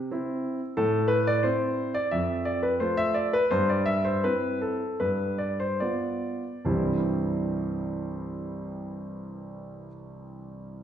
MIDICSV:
0, 0, Header, 1, 2, 480
1, 0, Start_track
1, 0, Key_signature, 0, "major"
1, 0, Tempo, 655022
1, 569, Time_signature, 4, 2, 24, 8
1, 1054, Tempo, 684151
1, 2014, Tempo, 715137
1, 2974, Tempo, 768246
1, 3454, Tempo, 800000
1, 3934, Tempo, 853485
1, 6761, End_track
2, 0, Start_track
2, 0, Title_t, "Grand piano"
2, 0, Program_c, 0, 0
2, 83, Note_on_c, 0, 60, 39
2, 88, Note_on_c, 0, 64, 44
2, 429, Note_off_c, 0, 60, 0
2, 432, Note_off_c, 0, 64, 0
2, 564, Note_on_c, 0, 69, 78
2, 566, Note_on_c, 0, 45, 61
2, 784, Note_off_c, 0, 69, 0
2, 790, Note_on_c, 0, 71, 77
2, 922, Note_off_c, 0, 71, 0
2, 933, Note_on_c, 0, 74, 85
2, 1039, Note_off_c, 0, 45, 0
2, 1048, Note_on_c, 0, 72, 68
2, 1054, Note_on_c, 0, 60, 38
2, 1055, Note_off_c, 0, 74, 0
2, 1055, Note_on_c, 0, 64, 38
2, 1397, Note_off_c, 0, 60, 0
2, 1397, Note_off_c, 0, 64, 0
2, 1407, Note_off_c, 0, 72, 0
2, 1409, Note_on_c, 0, 74, 73
2, 1528, Note_on_c, 0, 76, 67
2, 1530, Note_off_c, 0, 74, 0
2, 1534, Note_on_c, 0, 41, 50
2, 1765, Note_on_c, 0, 74, 66
2, 1771, Note_off_c, 0, 76, 0
2, 1888, Note_on_c, 0, 71, 62
2, 1890, Note_off_c, 0, 74, 0
2, 2002, Note_off_c, 0, 41, 0
2, 2009, Note_on_c, 0, 72, 66
2, 2012, Note_off_c, 0, 71, 0
2, 2012, Note_on_c, 0, 57, 40
2, 2019, Note_on_c, 0, 65, 41
2, 2126, Note_on_c, 0, 76, 86
2, 2128, Note_off_c, 0, 72, 0
2, 2240, Note_on_c, 0, 74, 67
2, 2244, Note_off_c, 0, 76, 0
2, 2350, Note_off_c, 0, 57, 0
2, 2354, Note_off_c, 0, 65, 0
2, 2360, Note_off_c, 0, 74, 0
2, 2368, Note_on_c, 0, 71, 81
2, 2484, Note_on_c, 0, 72, 82
2, 2485, Note_off_c, 0, 71, 0
2, 2490, Note_on_c, 0, 43, 60
2, 2604, Note_off_c, 0, 72, 0
2, 2609, Note_on_c, 0, 74, 67
2, 2718, Note_on_c, 0, 76, 79
2, 2728, Note_off_c, 0, 74, 0
2, 2845, Note_off_c, 0, 76, 0
2, 2846, Note_on_c, 0, 72, 67
2, 2963, Note_off_c, 0, 43, 0
2, 2973, Note_off_c, 0, 72, 0
2, 2976, Note_on_c, 0, 71, 67
2, 2979, Note_on_c, 0, 60, 34
2, 2981, Note_on_c, 0, 64, 34
2, 3189, Note_off_c, 0, 71, 0
2, 3210, Note_on_c, 0, 69, 57
2, 3323, Note_off_c, 0, 60, 0
2, 3325, Note_off_c, 0, 64, 0
2, 3429, Note_off_c, 0, 69, 0
2, 3449, Note_on_c, 0, 71, 59
2, 3455, Note_on_c, 0, 43, 38
2, 3681, Note_on_c, 0, 74, 58
2, 3689, Note_off_c, 0, 71, 0
2, 3807, Note_off_c, 0, 74, 0
2, 3809, Note_on_c, 0, 72, 65
2, 3920, Note_off_c, 0, 43, 0
2, 3932, Note_on_c, 0, 74, 61
2, 3933, Note_off_c, 0, 72, 0
2, 3939, Note_on_c, 0, 59, 35
2, 3940, Note_on_c, 0, 65, 35
2, 4283, Note_off_c, 0, 59, 0
2, 4283, Note_off_c, 0, 65, 0
2, 4408, Note_on_c, 0, 36, 45
2, 4410, Note_on_c, 0, 43, 38
2, 4413, Note_off_c, 0, 74, 0
2, 4413, Note_on_c, 0, 52, 38
2, 4413, Note_on_c, 0, 72, 48
2, 4416, Note_on_c, 0, 55, 39
2, 4416, Note_on_c, 0, 64, 41
2, 4418, Note_on_c, 0, 60, 41
2, 4553, Control_c, 0, 64, 127
2, 6208, Note_off_c, 0, 36, 0
2, 6211, Note_off_c, 0, 43, 0
2, 6214, Note_off_c, 0, 52, 0
2, 6214, Note_off_c, 0, 72, 0
2, 6216, Note_off_c, 0, 55, 0
2, 6217, Note_off_c, 0, 64, 0
2, 6219, Note_off_c, 0, 60, 0
2, 6761, End_track
0, 0, End_of_file